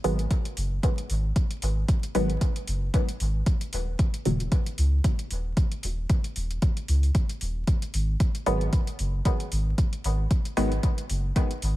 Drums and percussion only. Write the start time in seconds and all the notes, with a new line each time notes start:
0.04 open hi-hat
0.19 closed hi-hat
0.31 kick, closed hi-hat
0.45 closed hi-hat
0.57 open hi-hat
0.83 kick, closed hi-hat
0.98 closed hi-hat
1.10 open hi-hat
1.36 kick, closed hi-hat
1.51 closed hi-hat
1.62 open hi-hat
1.88 kick, closed hi-hat
2.03 closed hi-hat
2.15 open hi-hat
2.30 closed hi-hat
2.41 kick, closed hi-hat
2.56 closed hi-hat
2.67 open hi-hat
2.94 kick, closed hi-hat
3.09 closed hi-hat
3.20 open hi-hat
3.46 kick, closed hi-hat
3.61 closed hi-hat
3.73 open hi-hat
3.99 kick, closed hi-hat
4.14 closed hi-hat
4.25 open hi-hat
4.40 closed hi-hat
4.52 kick, closed hi-hat
4.66 closed hi-hat
4.78 open hi-hat
5.04 kick, closed hi-hat
5.19 closed hi-hat
5.31 open hi-hat
5.57 kick, closed hi-hat
5.72 closed hi-hat
5.83 open hi-hat
6.09 kick, closed hi-hat
6.24 closed hi-hat
6.36 open hi-hat
6.51 closed hi-hat
6.62 kick, closed hi-hat
6.77 closed hi-hat
6.88 open hi-hat
7.03 open hi-hat
7.15 kick, closed hi-hat
7.29 closed hi-hat
7.41 open hi-hat
7.67 kick, closed hi-hat
7.82 closed hi-hat
7.94 open hi-hat
8.20 kick, closed hi-hat
8.35 closed hi-hat
8.46 open hi-hat
8.61 closed hi-hat
8.73 kick, closed hi-hat
8.87 closed hi-hat
8.99 open hi-hat
9.25 kick, closed hi-hat
9.40 closed hi-hat
9.52 open hi-hat
9.78 kick, closed hi-hat
9.93 closed hi-hat
10.04 open hi-hat
10.31 kick, closed hi-hat
10.45 closed hi-hat
10.57 open hi-hat
10.72 closed hi-hat
10.83 kick, closed hi-hat
10.98 closed hi-hat
11.10 open hi-hat
11.36 kick, closed hi-hat
11.51 closed hi-hat
11.62 open hi-hat